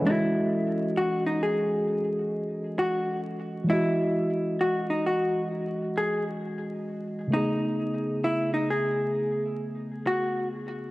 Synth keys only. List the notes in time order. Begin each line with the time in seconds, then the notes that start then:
Already playing: C#4 A4
0.01 E3 G#3
0.07 F#4 D#5
3.64 E3 G#3
3.70 F#4 D#5
7.27 C#3 A3
7.33 B3 G#4